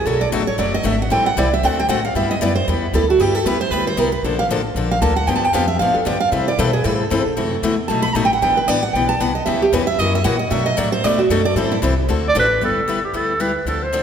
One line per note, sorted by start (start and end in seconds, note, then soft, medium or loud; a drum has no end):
0.06 0.31 B1 medium
0.06 0.24 B2 medium
0.06 0.24 F#3 medium
0.06 0.24 A3 medium
0.06 0.25 D4 medium
0.06 0.24 F#4 medium
0.06 0.21 A4 medium
0.21 0.28 D5 loud
0.32 0.57 A1 medium
0.32 0.42 B2 loud
0.32 0.42 F#3 medium
0.32 0.42 A3 medium
0.32 0.43 D4 medium
0.32 0.43 F#4 loud
0.47 0.58 C#5 medium
0.58 0.84 F#1 medium
0.58 0.76 B2 medium
0.58 0.76 F#3 medium
0.58 0.77 A3 medium
0.58 0.77 D4 medium
0.58 0.77 F#4 medium
0.58 0.73 D5 medium
0.74 0.85 D#5 loud
0.83 1.09 G#1 medium
0.83 0.94 B2 medium
0.83 0.94 F#3 medium
0.83 0.95 A3 medium
0.83 0.95 D4 medium
0.83 0.95 F#4 loud
0.83 1.00 E5 medium
1.02 1.11 F#5 medium
1.10 1.36 A1 medium
1.10 1.28 E3 medium
1.10 1.29 G3 medium
1.10 1.29 C4 medium
1.10 1.29 E4 medium
1.10 1.29 A4 medium
1.10 1.25 G5 loud
1.26 1.37 F#5 loud
1.37 1.62 C2 medium
1.37 1.47 E3 medium
1.37 1.47 G3 loud
1.37 1.47 C4 medium
1.37 1.47 E4 medium
1.37 1.48 A4 loud
1.37 1.52 D5 medium
1.54 1.65 E5 medium
1.63 1.88 D2 medium
1.63 1.81 D3 medium
1.63 1.81 A3 medium
1.63 1.81 C4 medium
1.63 1.82 F#4 medium
1.63 1.82 A4 medium
1.63 1.78 F#5 medium
1.80 1.89 G5 loud
1.88 2.14 A2 medium
1.88 1.99 D3 medium
1.88 1.99 A3 medium
1.88 1.99 C4 loud
1.88 1.99 F#4 loud
1.88 2.00 A4 loud
1.88 2.03 F#5 medium
2.05 2.15 F5 loud
2.15 2.40 G2 medium
2.15 2.33 G3 medium
2.15 2.33 B3 medium
2.15 2.34 E4 medium
2.15 2.34 G4 medium
2.15 2.30 E5 medium
2.31 2.41 D#5 loud
2.41 2.66 F#2 medium
2.41 2.51 G3 loud
2.41 2.51 B3 loud
2.41 2.52 E4 loud
2.41 2.52 G4 loud
2.41 2.55 D5 medium
2.55 2.66 C5 loud
2.68 2.93 E2 medium
2.68 2.85 G3 medium
2.68 2.86 B3 medium
2.68 2.86 E4 medium
2.68 2.86 G4 medium
2.68 2.92 B4 medium
2.93 3.18 D2 medium
2.93 3.03 G3 medium
2.93 3.04 B3 medium
2.93 3.04 E4 medium
2.93 3.04 G4 medium
2.93 3.09 A4 medium
3.10 3.20 F#4 medium
3.18 3.44 G2 medium
3.18 3.38 G3 medium
3.18 3.38 B3 medium
3.18 3.38 E4 medium
3.18 3.35 G4 medium
3.18 3.38 G4 medium
3.35 3.45 A4 medium
3.45 3.70 E2 medium
3.45 3.56 G3 loud
3.45 3.56 B3 medium
3.45 3.56 E4 loud
3.45 3.56 G4 loud
3.45 3.60 B4 medium
3.61 3.72 C5 loud
3.70 3.96 D2 medium
3.70 3.90 G3 medium
3.70 3.90 B3 medium
3.70 3.90 E4 medium
3.70 3.91 G4 medium
3.70 3.86 B4 medium
3.87 3.99 C5 loud
3.97 4.22 C2 medium
3.97 4.08 G3 medium
3.97 4.08 B3 medium
3.97 4.08 E4 medium
3.97 4.08 G4 medium
3.97 4.12 A#4 medium
4.12 4.23 B4 medium
4.22 4.48 A#1 medium
4.22 4.42 D3 medium
4.22 4.42 F3 medium
4.22 4.43 A#3 medium
4.22 4.43 D4 medium
4.22 4.43 A4 medium
4.22 4.38 C5 medium
4.39 4.46 F5 loud
4.49 4.74 A1 medium
4.49 4.60 D3 medium
4.49 4.60 F3 medium
4.49 4.60 A#3 medium
4.49 4.61 D4 loud
4.49 4.61 A4 medium
4.75 5.01 A#1 medium
4.75 4.94 D3 medium
4.75 4.94 F3 medium
4.75 4.95 A#3 medium
4.75 4.95 D4 medium
4.75 4.95 A4 medium
4.91 5.01 F5 loud
5.01 5.27 D2 medium
5.01 5.12 D3 medium
5.01 5.12 F3 medium
5.01 5.12 A#3 medium
5.01 5.13 D4 medium
5.01 5.13 A4 medium
5.01 5.16 A5 loud
5.16 5.27 F#5 medium
5.27 5.53 G2 medium
5.27 5.46 D3 medium
5.27 5.46 F3 medium
5.27 5.47 B3 medium
5.27 5.46 D4 medium
5.27 5.47 G4 medium
5.27 5.35 G5 medium
5.36 5.45 A5 loud
5.45 5.53 G5 medium
5.53 5.80 F2 medium
5.53 5.64 D3 medium
5.53 5.64 F3 loud
5.53 5.65 B3 medium
5.53 5.65 D4 medium
5.53 5.65 G4 loud
5.53 5.67 F5 medium
5.68 5.79 E5 loud
5.79 5.94 A2 medium
5.79 5.99 D3 medium
5.79 5.99 F3 medium
5.79 5.99 B3 medium
5.79 5.99 D4 medium
5.79 5.99 G4 medium
5.79 5.94 F5 medium
5.94 6.06 A4 medium
5.94 muted upright bass stroke soft
6.05 6.31 G2 medium
6.05 6.16 D3 medium
6.05 6.17 F3 medium
6.05 6.17 B3 medium
6.05 6.17 D4 medium
6.05 6.17 G4 loud
6.05 6.20 D5 medium
6.20 6.31 F5 loud
6.32 6.58 C3 medium
6.32 6.51 C3 medium
6.32 6.51 E3 medium
6.32 6.51 G3 medium
6.32 6.51 C4 medium
6.32 6.51 E4 medium
6.32 6.51 A4 medium
6.32 6.47 E5 medium
6.48 6.59 D5 loud
6.58 6.84 B2 medium
6.58 6.69 C3 loud
6.58 6.69 E3 loud
6.58 6.69 G3 loud
6.58 6.69 C4 medium
6.58 6.70 E4 loud
6.58 6.70 A4 loud
6.58 6.73 B4 medium
6.73 6.84 G#4 medium
6.84 7.10 A2 medium
6.84 7.03 C3 medium
6.84 7.03 E3 medium
6.84 7.03 G3 medium
6.84 7.03 C4 medium
6.84 7.03 E4 medium
6.84 7.63 A4 medium
6.84 7.03 A4 medium
7.10 7.25 G2 medium
7.10 7.21 C3 medium
7.10 7.21 E3 medium
7.10 7.22 G3 medium
7.10 7.21 C4 medium
7.10 7.22 E4 medium
7.10 7.22 A4 loud
7.26 muted upright bass stroke soft
7.37 7.62 F#2 medium
7.37 7.55 C3 medium
7.37 7.56 E3 medium
7.37 7.55 A3 medium
7.37 7.56 E4 medium
7.37 7.56 F#4 medium
7.62 7.88 E2 medium
7.62 7.74 C3 medium
7.62 7.74 E3 medium
7.62 7.74 A3 medium
7.62 7.74 E4 medium
7.62 7.74 F#4 medium
7.88 8.14 B1 medium
7.88 8.08 B2 medium
7.88 8.08 F#3 medium
7.88 8.08 A3 medium
7.88 8.08 D#4 medium
7.88 8.08 F#4 medium
7.88 8.02 A5 medium
8.02 8.15 B5 loud
8.15 8.41 A1 medium
8.15 8.26 B2 medium
8.15 8.26 F#3 medium
8.15 8.26 A3 medium
8.15 8.26 D#4 medium
8.15 8.26 F#4 medium
8.15 8.24 A5 medium
8.25 8.33 G5 medium
8.33 8.42 F#5 medium
8.42 8.67 G1 medium
8.42 8.60 E3 medium
8.42 8.60 B3 medium
8.42 8.61 D4 medium
8.42 8.61 G4 medium
8.42 8.57 G5 loud
8.57 8.68 B4 medium
8.68 8.93 A1 medium
8.68 8.79 E3 medium
8.68 8.79 B3 medium
8.68 8.79 D4 medium
8.68 8.79 G4 medium
8.68 8.83 D5 medium
8.83 8.94 F#5 loud
8.94 9.20 B1 medium
8.94 9.13 E3 medium
8.94 9.13 B3 medium
8.94 9.13 D4 medium
8.94 9.14 G4 medium
8.94 9.08 G5 medium
9.09 9.20 A5 loud
9.20 9.46 C2 medium
9.20 9.31 E3 medium
9.20 9.31 B3 medium
9.20 9.31 D4 medium
9.20 9.32 G4 medium
9.20 9.35 F#5 medium
9.35 9.45 D#5 medium
9.46 9.72 C#2 medium
9.46 9.65 C#3 medium
9.46 9.65 E3 medium
9.46 9.65 B3 medium
9.46 9.65 C#4 medium
9.46 9.65 G4 medium
9.46 9.61 E5 medium
9.62 9.73 G4 medium
9.72 9.98 E2 medium
9.72 9.83 C#3 medium
9.72 9.83 E3 loud
9.72 9.83 B3 medium
9.72 9.83 C#4 loud
9.72 9.84 G4 loud
9.72 9.87 B4 medium
9.87 10.00 E5 loud
9.98 10.24 F#2 medium
9.98 10.17 C#3 medium
9.98 10.17 E3 medium
9.98 10.18 A#3 medium
9.98 10.18 C#4 medium
9.98 10.18 F#4 medium
9.98 10.14 D#5 medium
10.15 10.24 E5 loud
10.24 10.50 A#2 medium
10.24 10.35 C#3 medium
10.24 10.35 E3 medium
10.24 10.35 A#3 loud
10.24 10.35 C#4 loud
10.24 10.36 F#4 loud
10.24 10.39 F#5 loud
10.39 10.50 D#5 medium
10.50 10.69 B2 medium
10.50 10.77 B2 medium
10.50 10.69 F#3 medium
10.50 10.70 A3 medium
10.50 10.70 D4 medium
10.50 10.70 F#4 medium
10.50 10.65 E5 loud
10.66 10.78 D#5 loud
10.77 11.03 A2 medium
10.77 10.87 B2 loud
10.77 10.88 F#3 loud
10.77 10.88 A3 loud
10.77 10.88 D4 loud
10.77 10.88 F#4 loud
10.77 10.92 D5 medium
10.92 11.04 C5 loud
11.03 11.29 E2 medium
11.03 11.22 B2 medium
11.03 11.22 F#3 medium
11.03 11.22 A3 medium
11.03 11.22 D4 medium
11.03 11.22 F#4 medium
11.03 11.18 D5 loud
11.19 11.30 F#4 medium
11.30 11.55 F#2 medium
11.30 11.40 B2 medium
11.30 11.40 F#3 medium
11.30 11.41 A3 medium
11.30 11.41 D4 loud
11.30 11.41 F#4 loud
11.30 11.45 A4 medium
11.45 11.56 D5 loud
11.55 11.81 A2 medium
11.55 11.74 E3 medium
11.55 11.75 G3 medium
11.55 11.75 C4 medium
11.55 11.75 E4 medium
11.55 11.75 A4 medium
11.55 11.71 C5 medium
11.72 11.78 E4 loud
11.82 12.08 C2 medium
11.82 11.92 E3 medium
11.82 11.93 G3 medium
11.82 11.93 C4 loud
11.82 11.93 E4 loud
11.82 11.93 A4 loud
12.08 12.34 D2 medium
12.08 12.27 D3 medium
12.08 12.27 A3 medium
12.08 12.27 C4 medium
12.08 12.27 F#4 medium
12.08 12.28 A4 medium
12.28 12.37 D5 loud
12.35 12.60 A1 medium
12.35 12.45 D3 medium
12.35 12.45 A3 loud
12.35 12.46 C4 loud
12.35 12.46 F#4 loud
12.35 12.46 A4 loud
12.39 12.62 B4 loud
12.61 13.03 G1 medium
12.61 12.79 G3 medium
12.61 12.80 B3 medium
12.61 12.80 E4 medium
12.61 12.80 G4 medium
12.61 13.01 A4 medium
12.88 12.98 G3 medium
12.88 12.98 B3 medium
12.88 12.98 E4 medium
12.88 12.98 G4 medium
13.04 13.17 G4 medium
13.13 13.55 D2 medium
13.13 13.32 G3 medium
13.13 13.32 B3 medium
13.13 13.32 E4 medium
13.13 13.33 G4 medium
13.13 13.42 A4 medium
13.40 13.50 G3 medium
13.40 13.50 B3 medium
13.40 13.50 E4 medium
13.40 13.51 G4 medium
13.40 13.67 B4 medium
13.65 14.03 D2 medium
13.65 13.85 D3 medium
13.65 13.85 F3 medium
13.65 13.85 C4 medium
13.65 13.85 D4 medium
13.65 13.84 A4 medium
13.65 13.85 A4 medium
13.83 14.03 C5 medium
13.93 14.03 D3 medium
13.93 14.03 F3 medium
13.93 14.03 C4 medium
13.93 14.03 D4 medium
13.93 14.03 A4 medium